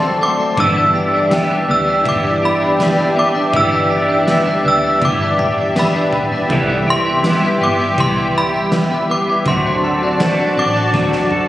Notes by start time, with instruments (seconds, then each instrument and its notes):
Already playing: fingered electric bass D2, clean electric guitar D3 F#3 A3 C4 F#4, analog synth pad A4 D5 A5 C6, nylon-string guitar E5 F#5, synth bell C6
0.02 clean electric guitar C4
0.21 clean electric guitar A3, nylon-string guitar F#5, synth bell D6
0.39 clean electric guitar C4
0.57 fingered electric bass G1, clean electric guitar G2 D3 E3 G3 B3 E4, analog synth pad G4 E5, synth bell E6, kick, ride
0.76 clean electric guitar D4
0.95 clean electric guitar G4
1.13 clean electric guitar D4
1.30 clean electric guitar E3 G3 B3, nylon-string guitar G5, snare, ride, tambourine
1.35 clean electric guitar E4
1.50 clean electric guitar D4
1.68 fingered electric bass D2, clean electric guitar B3, synth bell E6
1.87 clean electric guitar D4
2.02 fingered electric bass G1, clean electric guitar E3, kick
2.06 clean electric guitar G3 B3, synth bell D6, ride
2.13 clean electric guitar E4
2.23 clean electric guitar D4
2.42 clean electric guitar G4, synth bell B5
2.61 clean electric guitar D4
2.79 clean electric guitar B3, nylon-string guitar E5, snare, ride, tambourine
2.98 clean electric guitar D4
3.16 clean electric guitar B3, nylon-string guitar D5, synth bell D6
3.35 clean electric guitar D4
3.52 fingered electric bass G1, clean electric guitar G2 D3 E3 G3 B3 E4, kick, ride
3.56 synth bell E6
3.71 clean electric guitar D4
3.90 clean electric guitar G4
4.08 clean electric guitar D4
4.26 clean electric guitar E3 G3 B3, snare, ride, tambourine
4.31 clean electric guitar E4
4.45 clean electric guitar D4
4.64 fingered electric bass D2, clean electric guitar B3
4.68 synth bell E6
4.83 clean electric guitar D4
4.97 clean electric guitar E3
5.02 fingered electric bass G1, clean electric guitar E3 G3, nylon-string guitar B4, synth bell D6, kick, ride
5.06 clean electric guitar B3 E4
5.20 clean electric guitar D4
5.39 clean electric guitar G4, kick
5.57 clean electric guitar D4
5.75 clean electric guitar B3, synth bell B5, snare, ride, tambourine
5.94 clean electric guitar D4
6.13 clean electric guitar B3, kick
6.32 clean electric guitar D4
6.48 fingered electric bass C2, clean electric guitar C3 E3 G3 B3 E4, analog synth pad G4, nylon-string guitar A4, kick, ride
6.69 clean electric guitar E4, nylon-string guitar D5
6.87 clean electric guitar G4, synth bell C6
6.95 nylon-string guitar E5
7.05 clean electric guitar E4
7.23 clean electric guitar E3 G3 B3, snare, ride, tambourine
7.28 clean electric guitar E4
7.42 clean electric guitar E4
7.61 fingered electric bass G1, clean electric guitar B3, synth bell D6
7.79 clean electric guitar E4
7.94 fingered electric bass C2, clean electric guitar E3, kick
7.98 clean electric guitar G3, synth bell C6, ride
8.02 clean electric guitar B3 E4
8.17 clean electric guitar E4
8.35 clean electric guitar G4, synth bell B5
8.54 clean electric guitar E4
8.72 clean electric guitar B3, snare, ride, tambourine
8.91 clean electric guitar E4
9.09 clean electric guitar B3, synth bell D6
9.28 clean electric guitar E4
9.45 fingered electric bass D2, clean electric guitar D3 F#3 A3 C4 F#4, analog synth pad F#4 D5 A5, nylon-string guitar E5, synth bell C6, kick, ride
9.65 clean electric guitar D4
9.84 clean electric guitar A4
10.03 clean electric guitar D4
10.18 clean electric guitar D3 A3 C4, snare, ride, tambourine
10.22 clean electric guitar C4 F#4
10.38 clean electric guitar D4
10.57 fingered electric bass A1, clean electric guitar C4, synth bell D6
10.75 clean electric guitar D4
10.90 fingered electric bass D2, clean electric guitar D3 F#3, kick, snare
10.95 clean electric guitar A3
10.99 clean electric guitar C4 F#4
11.12 clean electric guitar D4, snare
11.31 clean electric guitar A4, high tom